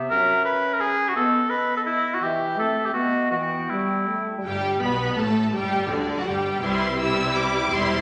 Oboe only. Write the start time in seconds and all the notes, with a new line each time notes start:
0.10 A#4
0.45 B4
0.73 A#4
0.81 G#4
1.08 F#4
1.16 A4
1.50 B4
1.77 A4
1.86 E4
2.14 F#4
2.23 G4
2.59 A4
2.86 G4
2.94 F#4
3.31 F#4
3.70 E4